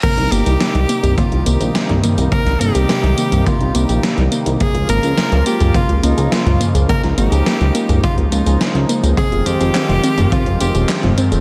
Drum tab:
CC |x---------------|----------------|----------------|----------------|
HH |xxxxxxxxxxxxxxxx|xxxxxxxxxxxxxxxx|xxxxxxxxxxxxxxxx|xxxxxxxxxxxxxxxx|
TB |x-xxx-xxx-xxx-xx|x-xxx-xxx-xxx-xx|x-xxx-xxx-xxx-xx|x-xxx-xxx-xxx-xx|
CP |----------------|----------------|----------------|----------------|
SD |----o-------o---|-o--o-------o---|----o-------o---|-o--o-------o---|
T2 |-------o-----oo-|-------o--------|-------o-----oo-|-------o--------|
BD |o-------o-------|o-------o-------|o-------o-------|o-------o-------|

CC |----------------|
HH |xxxxxxxxxxxxxxxx|
TB |x-xxx-xxx-xxx-xx|
CP |----x-------x---|
SD |----o-------o---|
T2 |-------o-----oo-|
BD |o-------o-------|